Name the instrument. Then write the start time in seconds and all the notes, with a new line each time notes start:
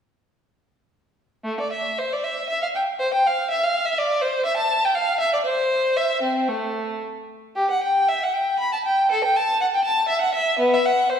violin
1.44 A3
1.60 D5
1.72 E5
1.98 C5
2.13 D5
2.24 E5
2.49 E5
2.63 F5
2.75 G5
2.99 C5
3.14 G5
3.26 F5
3.50 E5
3.63 F5
3.85 E5
3.98 D5
4.22 C5
4.45 E5
4.57 A5
4.85 G5
4.95 F5
5.20 E5
5.33 D5
5.45 C5
5.96 E5
6.22 C4
6.48 A3
7.56 G4
7.71 F#5
7.83 G5
8.08 E5
8.23 F#5
8.34 G5
8.59 B5
8.73 A5
8.85 G5
9.11 A4
9.24 G5
9.36 A5
9.61 F#5
9.75 G5
9.84 A5
10.08 E5
10.21 F#5
10.34 E5
10.59 B3
10.74 E5
10.85 F#5
11.09 C5